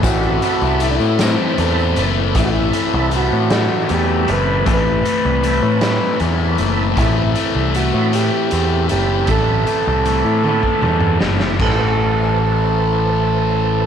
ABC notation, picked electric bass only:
X:1
M:6/8
L:1/16
Q:3/8=52
K:Ador
V:1 name="Picked electric bass" clef=bass
A,,,2 z C,,2 A,,2 z E,,2 F,,,2 | A,,,2 z C,,2 A,,2 z E,,2 F,,,2 | A,,,2 z C,,2 A,,2 z E,,2 F,,,2 | A,,,2 z C,,2 A,,2 z E,,2 F,,,2 |
A,,,2 z C,,2 A,,2 z E,,2 F,,,2 | A,,,12 |]